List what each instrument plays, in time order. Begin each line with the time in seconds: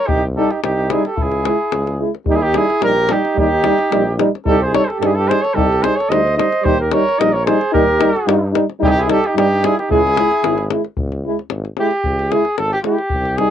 0.07 tuba C2, flugelhorn D#4, cornet G4, davul low
0.37 euphonium G3, french horn D#4, flugelhorn G4, cornet A4
0.51 flugelhorn D#4, cornet G4, davul high
0.63 tuba C2, flugelhorn D#4, cornet G4, davul high
0.90 euphonium G3, french horn D#4, flugelhorn E4, cornet G#4, davul high
1.05 flugelhorn G4, cornet A4, davul high
1.17 tuba C#2, flugelhorn E4, davul low
1.22 cornet G#4
1.31 davul high
1.45 euphonium G#3, french horn E4, davul high
1.72 tuba C#2, davul high
1.87 davul high
1.99 euphonium G#3, french horn E4
2.15 davul high
2.26 tuba D#2, euphonium G3, french horn D#4, flugelhorn D#4, davul low
2.30 cornet G4
2.35 flugelhorn E4, cornet G#4
2.43 flugelhorn D#4, cornet G4
2.54 euphonium G3, french horn D#4, flugelhorn E4, cornet G#4, davul high
2.70 davul high
2.81 tuba A#1, euphonium G3, french horn D#4, cornet A#4, davul high
2.87 flugelhorn G4
3.09 euphonium G3, french horn D#4, flugelhorn D#4, cornet G4, davul high
3.25 davul high
3.35 tuba D#2, euphonium G3, french horn D#4, davul low
3.39 flugelhorn D#4, cornet G4
3.64 euphonium G3, french horn D#4, davul high
3.79 davul high
3.92 tuba A#1, euphonium G3, french horn D#4, davul high
4.18 euphonium G3, french horn D#4, davul high
4.36 davul high
4.46 tuba C2, euphonium G3, french horn D#4, flugelhorn G4, cornet A4, davul low
4.63 flugelhorn G#4, cornet C5
4.72 euphonium G3, french horn D#4, cornet C#5, davul high
4.78 flugelhorn A4
4.85 flugelhorn G#4, cornet C5
4.89 flugelhorn G4, cornet A4, davul high
5.00 tuba G2, euphonium G3, french horn D#4, cornet A4, davul high
5.05 flugelhorn E4 G4, cornet G#4
5.15 flugelhorn G4, cornet A4
5.28 euphonium G3, french horn D#4, flugelhorn G#4, cornet C5, davul high
5.42 flugelhorn A4, cornet C#5, davul high
5.55 tuba C2, euphonium G3, french horn D#4, flugelhorn G4, cornet A4, davul low
5.73 davul high
5.83 euphonium G3, french horn D#4, flugelhorn G#4, cornet C5, davul high
5.96 cornet C#5
6.00 flugelhorn A4, davul high
6.09 tuba D2, euphonium G3, french horn D#4, flugelhorn C5, cornet D#5, davul high
6.27 davul high
6.36 euphonium G3, french horn D#4, flugelhorn C5, cornet D#5, davul high
6.52 davul high
6.63 tuba D#2, euphonium G3, french horn D#4, flugelhorn G4, cornet C5, davul low
6.80 flugelhorn G4, cornet A#4
6.91 euphonium G3, french horn D#4, flugelhorn A#4, cornet C#5, davul high
7.08 davul high
7.19 tuba A#1, euphonium G3, french horn D#4, flugelhorn A#4, cornet D#5, davul high
7.33 flugelhorn A#4, cornet C#5
7.45 euphonium G3, french horn D#4, flugelhorn G#4, cornet C5, davul high
7.61 davul high
7.72 tuba D#2, euphonium G3, french horn D#4, flugelhorn G4, cornet A#4, davul low
7.98 euphonium G3, french horn D#4, davul high
8.16 davul high
8.27 tuba G2, euphonium G3, french horn D#4, davul high
8.53 euphonium G3, french horn D#4, davul high
8.70 davul high
8.80 tuba C2, euphonium G3, french horn D#4, cornet G4, davul low
8.84 flugelhorn E4, cornet G#4
8.89 flugelhorn D#4, cornet G4
8.98 flugelhorn E4, cornet G#4
9.07 euphonium G3, french horn D#4, cornet A4, davul high
9.12 flugelhorn G4
9.24 flugelhorn D#4, cornet G4, davul high
9.35 tuba G2, euphonium G3, french horn D#4, flugelhorn D#4, cornet G4, davul high
9.62 euphonium G3, french horn D#4, cornet G#4, davul high
9.66 flugelhorn E4
9.78 flugelhorn D#4, cornet G4, davul high
9.90 tuba C#2, euphonium G#3, french horn E4, flugelhorn E4, cornet G#4, davul low
10.07 davul high
10.17 euphonium G#3, french horn E4, davul high
10.31 davul high
10.44 tuba G#1, euphonium G#3, french horn E4, davul high
10.58 davul high
10.70 euphonium G#3, french horn E4, davul high
10.84 davul high
10.97 tuba C#2, davul low
11.12 davul high
11.25 euphonium G#3, french horn E4
11.39 davul high
11.50 tuba G#1, davul high
11.65 davul high
11.77 euphonium G#3, french horn E4, cornet G4, davul high
11.91 davul high
12.04 tuba C#2, davul low
12.19 davul high
12.31 euphonium G#3, french horn E4, cornet G#4, davul high
12.45 davul high
12.58 tuba G#1, cornet A4, davul high
12.73 cornet G4, davul high
12.83 euphonium G#3, french horn E4, cornet G4, davul high
12.99 davul high
13.10 davul low
13.14 tuba C2
13.25 davul high
13.38 euphonium G3, french horn D#4, cornet G#4, davul high